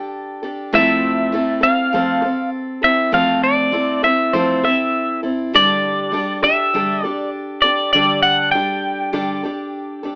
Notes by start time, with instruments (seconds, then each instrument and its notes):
Already playing: steel-string acoustic guitar D4 G4 A4, clean electric guitar G5
0.43 steel-string acoustic guitar D4 G4 A4
0.73 steel-string acoustic guitar F3 A3 C4 E4 A4, clean electric guitar E5
1.32 steel-string acoustic guitar A3 C4 E4 A4
1.61 steel-string acoustic guitar C4 A4, clean electric guitar F5
1.93 steel-string acoustic guitar F3 A3 C4 A4
2.22 steel-string acoustic guitar C4 A4
2.82 steel-string acoustic guitar C4 E4 A4, clean electric guitar E5
3.12 steel-string acoustic guitar F3 A3 C4 A4, clean electric guitar F5
3.44 clean electric guitar D5
3.72 steel-string acoustic guitar A3 C4 E4 A4
4.03 steel-string acoustic guitar C4 E4 A4, clean electric guitar E5
4.33 steel-string acoustic guitar F3 A3 C4 E4 A4, clean electric guitar C5
4.64 steel-string acoustic guitar C4 E4 A4, clean electric guitar E5
5.23 steel-string acoustic guitar C4 E4 A4
5.53 steel-string acoustic guitar D3 G3 D4 G4 A4, clean electric guitar D5
6.11 steel-string acoustic guitar G3 D4 G4 A4
6.42 steel-string acoustic guitar D4 G4 A4, clean electric guitar E5
6.74 steel-string acoustic guitar D3 G3 D4 G4 A4
7.04 steel-string acoustic guitar D4 G4 A4, clean electric guitar D5
7.62 steel-string acoustic guitar D4 G4 A4, clean electric guitar D5
7.93 steel-string acoustic guitar D3 G3 D4 G4 A4, clean electric guitar D5
8.23 clean electric guitar F#5
8.52 steel-string acoustic guitar G3 D4 G4, clean electric guitar G5
8.56 steel-string acoustic guitar A4
9.13 steel-string acoustic guitar D3 G3 D4 G4 A4
9.44 steel-string acoustic guitar D4 G4 A4
10.03 steel-string acoustic guitar D4 G4 A4